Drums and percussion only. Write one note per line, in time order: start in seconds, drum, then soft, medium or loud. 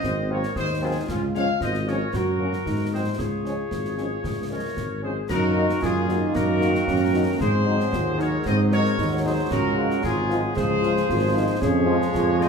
0.03 concert bass drum medium
0.03 snare medium
0.43 snare medium
0.56 concert bass drum medium
0.56 snare medium
1.08 concert bass drum medium
1.08 snare medium
1.08 crash soft
1.35 snare soft
1.61 concert bass drum medium
1.61 snare medium
1.74 snare soft
1.88 snare soft
2.13 concert bass drum medium
2.13 snare medium
2.53 snare medium
2.66 concert bass drum medium
2.66 snare medium
3.19 concert bass drum medium
3.19 snare medium
3.45 snare soft
3.71 concert bass drum medium
3.71 snare medium
3.85 snare soft
3.98 snare soft
4.24 concert bass drum medium
4.24 snare medium
4.77 concert bass drum medium
4.77 snare medium
5.29 concert bass drum medium
5.29 snare medium
5.29 crash medium
5.69 snare medium
5.82 concert bass drum medium
5.82 snare medium
6.09 snare medium
6.35 concert bass drum medium
6.35 snare medium
6.61 snare medium
6.75 snare medium
6.87 concert bass drum medium
6.87 snare medium
7.40 concert bass drum medium
7.40 snare medium
7.80 snare medium
7.93 concert bass drum medium
7.93 snare medium
8.19 snare medium
8.45 concert bass drum medium
8.45 snare medium
8.72 snare medium
8.85 snare medium
8.98 concert bass drum medium
8.98 snare medium
9.51 concert bass drum medium
9.51 snare medium
9.51 crash soft
9.90 snare medium
10.04 concert bass drum medium
10.04 snare medium
10.30 snare medium
10.57 concert bass drum medium
10.57 snare medium
10.83 snare medium
10.96 snare medium
11.09 concert bass drum medium
11.09 snare medium
11.62 concert bass drum medium
11.62 snare medium
12.02 snare medium
12.15 concert bass drum medium
12.15 snare medium
12.41 snare medium